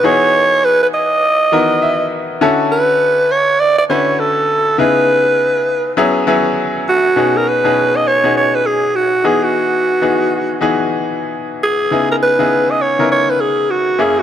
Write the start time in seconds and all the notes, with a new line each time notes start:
0.03 E3 B3 D#4 F#4 G#4 C#5
0.65 B4
0.83 B4
0.94 D#5
1.52 D#3 E3 B3 F#4 A#4
1.82 E5
2.41 D3 C#4 E4 F#4 A4
2.72 B4
3.31 C#5
3.60 D5
3.78 D5
3.89 D3 C#4 E4 F#4 B4 C#5
4.19 A4
4.78 C#3 B3 D#4 E4 G#4 B4
5.97 F#3 B3 C#4 E4 G#4
6.27 F#3 B3 C#4 E4 G#4
6.89 F#4
7.16 B2 C#4 D#4 F#4 G#4
7.37 A#4
7.48 B4
7.64 B2 C#4 D#4 F#4 G#4
7.96 D#5
8.07 C#5
8.23 B2 C#4 D#4 F#4 G#4
8.37 C#5
8.55 B4
8.66 G#4
8.96 F#4
9.24 E3 B3 D#4 F#4 G#4
9.44 F#4
10.01 E3 B3 D#4 F#4 G#4
10.61 E3 B3 D#4 F#4 G#4
11.63 G#4
11.91 C#3 B3 D#4 E4 G#4
12.11 A#4
12.23 B4
12.39 C#3 B3 D#4 E4 G#4
12.70 D#5
12.81 C#5
12.99 C#3 B3 D#4 E4 A#4
13.12 C#5
13.30 B4
13.41 G#4
13.71 F#4
13.99 F#2 A#3 C#4 E4 G#4
14.19 F#4